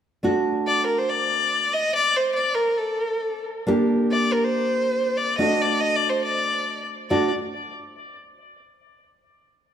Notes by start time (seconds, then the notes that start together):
0.23 A3 D4 F#4
0.67 D5
0.87 A#4
0.98 C5
1.09 D5
1.73 D#5
1.96 D5
2.16 C5
2.35 D5
2.55 A#4
2.77 A4
3.67 A#3 D4 G4
4.12 D5
4.33 A#4
4.44 C5
5.17 D5
5.38 A3 D4 F#4 D#5
5.61 D5
5.80 D#5
5.96 D5
6.09 C5
6.24 D5
7.10 A3 D4 F#4 D5